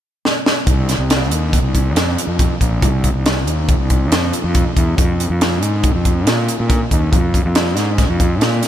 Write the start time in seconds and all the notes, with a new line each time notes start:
0.25 snare
0.46 snare
0.67 C2, kick, closed hi-hat
0.89 snare, closed hi-hat
0.98 C2
1.10 snare, closed hi-hat
1.31 D#2, closed hi-hat
1.53 kick, closed hi-hat
1.63 C2
1.75 kick, closed hi-hat
1.95 F2, snare, closed hi-hat
2.18 closed hi-hat
2.27 F2
2.39 kick, closed hi-hat
2.61 A#1, kick, closed hi-hat
2.82 C2, kick, closed hi-hat
3.04 kick, closed hi-hat
3.14 C2
3.26 snare, closed hi-hat
3.47 D#2, closed hi-hat
3.69 kick, closed hi-hat
3.80 C2
3.90 kick, closed hi-hat
4.11 F2, snare, closed hi-hat
4.33 closed hi-hat
4.44 F2
4.55 kick, closed hi-hat
4.77 E2, kick, closed hi-hat
4.98 F2, kick, closed hi-hat
5.20 closed hi-hat
5.30 F2
5.41 snare, closed hi-hat
5.62 G#2, closed hi-hat
5.84 kick, closed hi-hat
5.95 F2
6.05 kick, closed hi-hat
6.27 A#2, snare, closed hi-hat
6.48 closed hi-hat
6.60 A#2
6.70 kick, closed hi-hat
6.91 D#2, kick, closed hi-hat
7.12 F2, kick, closed hi-hat
7.34 kick, closed hi-hat
7.45 F2
7.55 snare, closed hi-hat
7.77 G#2, snare, closed hi-hat
7.98 kick, snare, closed hi-hat
8.09 F2
8.20 kick, closed hi-hat
8.41 A#2, snare, closed hi-hat
8.63 snare, closed hi-hat